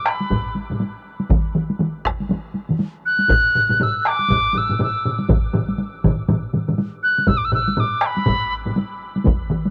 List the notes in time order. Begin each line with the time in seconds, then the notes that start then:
0.05 B5, taiko rim
0.20 taiko high
0.30 taiko, taiko low-mid, taiko high
0.55 taiko high
0.70 taiko low-mid, taiko high
0.80 taiko high
1.20 taiko high
1.30 taiko, taiko mid, taiko high
1.55 taiko mid
1.70 taiko high
1.79 taiko mid, taiko high
2.05 taiko rim, taiko
2.20 taiko high
2.29 taiko mid, taiko high
2.54 taiko high
2.69 taiko mid, taiko high
2.79 taiko high
3.06 F#6
3.19 taiko high
3.29 taiko, taiko low-mid, taiko high
3.55 taiko low-mid
3.69 taiko low-mid, taiko high
3.80 E6, taiko low-mid, taiko high
4.05 D6, taiko rim
4.19 taiko high
4.28 taiko, taiko low-mid, taiko high
4.54 E6, taiko low-mid, taiko high
4.69 taiko low-mid, taiko high
4.79 taiko low-mid, taiko high
4.83 E6
5.05 taiko low-mid
5.19 taiko high
5.29 taiko, taiko low-mid, taiko mid, taiko high
5.54 taiko low-mid, taiko mid
5.68 taiko high
5.78 taiko high
6.04 taiko, taiko low-mid, taiko mid
6.28 taiko low-mid, taiko mid, taiko high
6.53 taiko low-mid, taiko mid, taiko high
6.68 taiko low-mid, taiko mid, taiko high
6.78 taiko high
7.03 F#6
7.18 taiko high
7.27 E6, taiko, taiko low-mid, taiko high
7.37 D6
7.45 E6
7.52 E6, taiko low-mid
7.68 taiko high
7.77 D6, taiko low-mid, taiko high
8.01 taiko rim
8.06 B5
8.17 taiko high
8.26 taiko, taiko low-mid, taiko high
8.66 taiko low-mid, taiko high
8.76 taiko high
9.16 taiko high
9.25 taiko, taiko mid, taiko high
9.51 taiko mid
9.66 taiko high